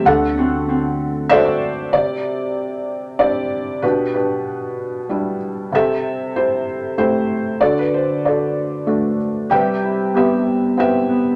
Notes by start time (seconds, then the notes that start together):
Already playing: E3 C4 G4
0.05 D2 D3 A3 A4 F#5
0.37 A3 C4 F#4
0.69 C4
1.29 C4 D4 F#4 A4 C5 D5 E5
1.45 E5
1.93 C3 G4 D5
3.19 C4 D4 E4 G4 D5
3.82 B2 D4 G4 B4
4.14 D4 G4 B4
5.09 G3 D4 E4
5.72 C3 G4 A4 E5
6.36 E4 G4 C5
6.98 A3 C4 E4 G4 C5
7.61 D3 F#4 A4 D5
7.79 B4
7.94 C5
8.25 F#4 A4 D5
8.87 A3 D4 F#4
9.50 C3 G3 G4 B4 E5 G5
9.82 E4
10.14 B3 E4 G4 B4 E5
10.77 B3 C4 E4 G4 B4 E5
11.09 B3